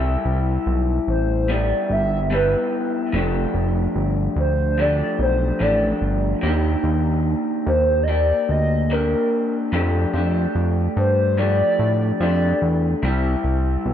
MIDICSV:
0, 0, Header, 1, 4, 480
1, 0, Start_track
1, 0, Tempo, 824176
1, 1828, Time_signature, 4, 2, 24, 8
1, 8116, End_track
2, 0, Start_track
2, 0, Title_t, "Soft synth lead"
2, 0, Program_c, 0, 80
2, 637, Note_on_c, 0, 72, 88
2, 875, Note_on_c, 0, 74, 110
2, 884, Note_off_c, 0, 72, 0
2, 1112, Note_off_c, 0, 74, 0
2, 1120, Note_on_c, 0, 76, 106
2, 1338, Note_off_c, 0, 76, 0
2, 1360, Note_on_c, 0, 71, 87
2, 1702, Note_off_c, 0, 71, 0
2, 2559, Note_on_c, 0, 72, 96
2, 2797, Note_on_c, 0, 74, 121
2, 2806, Note_off_c, 0, 72, 0
2, 3032, Note_off_c, 0, 74, 0
2, 3042, Note_on_c, 0, 72, 107
2, 3275, Note_on_c, 0, 74, 103
2, 3283, Note_off_c, 0, 72, 0
2, 3643, Note_off_c, 0, 74, 0
2, 4471, Note_on_c, 0, 72, 90
2, 4678, Note_on_c, 0, 75, 77
2, 4687, Note_off_c, 0, 72, 0
2, 4711, Note_on_c, 0, 74, 114
2, 4720, Note_off_c, 0, 75, 0
2, 4956, Note_on_c, 0, 75, 109
2, 4965, Note_off_c, 0, 74, 0
2, 5196, Note_on_c, 0, 70, 88
2, 5205, Note_off_c, 0, 75, 0
2, 5564, Note_off_c, 0, 70, 0
2, 6394, Note_on_c, 0, 72, 97
2, 6631, Note_on_c, 0, 74, 127
2, 6640, Note_off_c, 0, 72, 0
2, 7110, Note_off_c, 0, 74, 0
2, 7122, Note_on_c, 0, 74, 106
2, 7464, Note_off_c, 0, 74, 0
2, 8116, End_track
3, 0, Start_track
3, 0, Title_t, "Clean electric guitar"
3, 0, Program_c, 1, 27
3, 0, Note_on_c, 1, 55, 88
3, 0, Note_on_c, 1, 64, 98
3, 0, Note_on_c, 1, 67, 88
3, 861, Note_off_c, 1, 55, 0
3, 863, Note_on_c, 1, 55, 62
3, 864, Note_off_c, 1, 64, 0
3, 869, Note_on_c, 1, 59, 70
3, 871, Note_on_c, 1, 64, 65
3, 875, Note_off_c, 1, 67, 0
3, 878, Note_on_c, 1, 67, 72
3, 1337, Note_off_c, 1, 59, 0
3, 1338, Note_off_c, 1, 55, 0
3, 1340, Note_on_c, 1, 55, 60
3, 1343, Note_off_c, 1, 64, 0
3, 1344, Note_on_c, 1, 59, 63
3, 1350, Note_on_c, 1, 64, 66
3, 1351, Note_off_c, 1, 67, 0
3, 1353, Note_on_c, 1, 67, 68
3, 1818, Note_off_c, 1, 55, 0
3, 1820, Note_on_c, 1, 53, 80
3, 1824, Note_off_c, 1, 59, 0
3, 1826, Note_on_c, 1, 57, 84
3, 1829, Note_off_c, 1, 64, 0
3, 1832, Note_on_c, 1, 62, 93
3, 1837, Note_off_c, 1, 67, 0
3, 1840, Note_on_c, 1, 67, 85
3, 2775, Note_off_c, 1, 53, 0
3, 2779, Note_off_c, 1, 57, 0
3, 2782, Note_on_c, 1, 53, 65
3, 2786, Note_on_c, 1, 57, 67
3, 2788, Note_off_c, 1, 62, 0
3, 2790, Note_on_c, 1, 62, 70
3, 2792, Note_off_c, 1, 67, 0
3, 2794, Note_on_c, 1, 67, 73
3, 3250, Note_off_c, 1, 53, 0
3, 3254, Note_off_c, 1, 57, 0
3, 3257, Note_on_c, 1, 53, 64
3, 3261, Note_on_c, 1, 57, 63
3, 3265, Note_off_c, 1, 62, 0
3, 3267, Note_on_c, 1, 62, 72
3, 3268, Note_off_c, 1, 67, 0
3, 3271, Note_on_c, 1, 67, 70
3, 3733, Note_off_c, 1, 53, 0
3, 3736, Note_on_c, 1, 51, 88
3, 3743, Note_off_c, 1, 57, 0
3, 3745, Note_on_c, 1, 58, 87
3, 3749, Note_off_c, 1, 62, 0
3, 3751, Note_on_c, 1, 62, 81
3, 3755, Note_off_c, 1, 67, 0
3, 3757, Note_on_c, 1, 67, 92
3, 4698, Note_off_c, 1, 58, 0
3, 4702, Note_off_c, 1, 51, 0
3, 4705, Note_on_c, 1, 58, 72
3, 4710, Note_off_c, 1, 67, 0
3, 4712, Note_on_c, 1, 67, 66
3, 5177, Note_off_c, 1, 58, 0
3, 5184, Note_on_c, 1, 58, 67
3, 5188, Note_off_c, 1, 62, 0
3, 5190, Note_on_c, 1, 62, 65
3, 5191, Note_off_c, 1, 67, 0
3, 5193, Note_on_c, 1, 67, 65
3, 5661, Note_on_c, 1, 53, 85
3, 5664, Note_off_c, 1, 58, 0
3, 5666, Note_off_c, 1, 62, 0
3, 5666, Note_on_c, 1, 57, 91
3, 5669, Note_off_c, 1, 67, 0
3, 5669, Note_on_c, 1, 62, 97
3, 5672, Note_on_c, 1, 67, 100
3, 5896, Note_off_c, 1, 67, 0
3, 5903, Note_on_c, 1, 67, 59
3, 5904, Note_off_c, 1, 53, 0
3, 5905, Note_off_c, 1, 62, 0
3, 5907, Note_off_c, 1, 57, 0
3, 5912, Note_on_c, 1, 62, 51
3, 5917, Note_on_c, 1, 57, 46
3, 6623, Note_off_c, 1, 57, 0
3, 6625, Note_on_c, 1, 53, 58
3, 6627, Note_off_c, 1, 62, 0
3, 6630, Note_on_c, 1, 57, 67
3, 6634, Note_on_c, 1, 62, 63
3, 6637, Note_off_c, 1, 67, 0
3, 6639, Note_on_c, 1, 67, 70
3, 7102, Note_off_c, 1, 57, 0
3, 7107, Note_off_c, 1, 53, 0
3, 7107, Note_off_c, 1, 62, 0
3, 7109, Note_on_c, 1, 57, 60
3, 7114, Note_on_c, 1, 62, 60
3, 7118, Note_off_c, 1, 67, 0
3, 7120, Note_on_c, 1, 67, 60
3, 7587, Note_on_c, 1, 55, 84
3, 7589, Note_off_c, 1, 57, 0
3, 7591, Note_off_c, 1, 62, 0
3, 7597, Note_on_c, 1, 64, 93
3, 7599, Note_off_c, 1, 67, 0
3, 7601, Note_on_c, 1, 67, 102
3, 8116, Note_off_c, 1, 55, 0
3, 8116, Note_off_c, 1, 64, 0
3, 8116, Note_off_c, 1, 67, 0
3, 8116, End_track
4, 0, Start_track
4, 0, Title_t, "Analog synth bass"
4, 0, Program_c, 2, 38
4, 0, Note_on_c, 2, 36, 118
4, 99, Note_off_c, 2, 36, 0
4, 146, Note_on_c, 2, 36, 92
4, 339, Note_off_c, 2, 36, 0
4, 387, Note_on_c, 2, 35, 99
4, 579, Note_off_c, 2, 35, 0
4, 626, Note_on_c, 2, 33, 89
4, 1010, Note_off_c, 2, 33, 0
4, 1104, Note_on_c, 2, 31, 94
4, 1489, Note_off_c, 2, 31, 0
4, 1824, Note_on_c, 2, 29, 100
4, 2017, Note_off_c, 2, 29, 0
4, 2060, Note_on_c, 2, 29, 98
4, 2255, Note_off_c, 2, 29, 0
4, 2302, Note_on_c, 2, 31, 97
4, 2496, Note_off_c, 2, 31, 0
4, 2539, Note_on_c, 2, 38, 88
4, 2926, Note_off_c, 2, 38, 0
4, 3022, Note_on_c, 2, 35, 86
4, 3216, Note_off_c, 2, 35, 0
4, 3262, Note_on_c, 2, 33, 104
4, 3456, Note_off_c, 2, 33, 0
4, 3502, Note_on_c, 2, 31, 89
4, 3696, Note_off_c, 2, 31, 0
4, 3744, Note_on_c, 2, 39, 102
4, 3937, Note_off_c, 2, 39, 0
4, 3980, Note_on_c, 2, 39, 93
4, 4281, Note_off_c, 2, 39, 0
4, 4463, Note_on_c, 2, 39, 96
4, 4849, Note_off_c, 2, 39, 0
4, 4944, Note_on_c, 2, 38, 87
4, 5329, Note_off_c, 2, 38, 0
4, 5664, Note_on_c, 2, 41, 107
4, 5857, Note_off_c, 2, 41, 0
4, 5904, Note_on_c, 2, 41, 94
4, 6097, Note_off_c, 2, 41, 0
4, 6145, Note_on_c, 2, 41, 83
4, 6338, Note_off_c, 2, 41, 0
4, 6386, Note_on_c, 2, 43, 102
4, 6771, Note_off_c, 2, 43, 0
4, 6867, Note_on_c, 2, 45, 92
4, 7060, Note_off_c, 2, 45, 0
4, 7107, Note_on_c, 2, 41, 106
4, 7300, Note_off_c, 2, 41, 0
4, 7348, Note_on_c, 2, 40, 94
4, 7540, Note_off_c, 2, 40, 0
4, 7587, Note_on_c, 2, 36, 116
4, 7779, Note_off_c, 2, 36, 0
4, 7827, Note_on_c, 2, 36, 90
4, 8020, Note_off_c, 2, 36, 0
4, 8068, Note_on_c, 2, 35, 91
4, 8116, Note_off_c, 2, 35, 0
4, 8116, End_track
0, 0, End_of_file